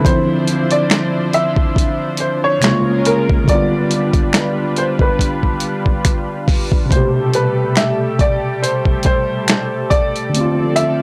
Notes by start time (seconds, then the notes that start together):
Already playing: E4
0.01 D3 F3 D4 C5
0.05 C4 C5, kick, closed hi-hat
0.11 E4
0.48 closed hi-hat
0.71 D5, closed hi-hat
0.90 finger snap, snare, closed hi-hat
1.33 E5, closed hi-hat
1.56 kick
1.76 kick, closed hi-hat
2.17 C5, closed hi-hat
2.44 C#5
2.60 C3 G#3 A#3 C#4 F4 A#4, finger snap, snare, closed hi-hat
2.64 C#3 F4, finger snap
3.05 A#4, closed hi-hat
3.29 kick
3.44 D3 G3, kick
3.48 G3 B3 D4 F4 B4 D5, closed hi-hat
3.55 F4
3.91 closed hi-hat
4.13 kick, closed hi-hat
4.33 finger snap, snare, closed hi-hat
4.76 C5, closed hi-hat
4.99 B4, kick
5.19 kick, closed hi-hat
5.43 kick
5.60 closed hi-hat
5.86 kick
6.05 finger snap, kick, closed hi-hat
6.48 kick, open hi-hat
6.72 kick
6.86 C3 A3
6.91 B2 G3 A3 G4 A4 C5, kick, closed hi-hat
6.97 G4
7.34 B4, closed hi-hat
7.76 E5, finger snap, snare, closed hi-hat
8.19 D5, kick, closed hi-hat
8.63 C5, closed hi-hat
8.85 kick
9.03 C5, kick, closed hi-hat
9.48 finger snap, snare, closed hi-hat
9.50 finger snap
9.90 D5, kick, closed hi-hat
10.16 closed hi-hat
10.30 D3 A3
10.34 F3 C4 D5, closed hi-hat
10.41 F4
10.76 E5, closed hi-hat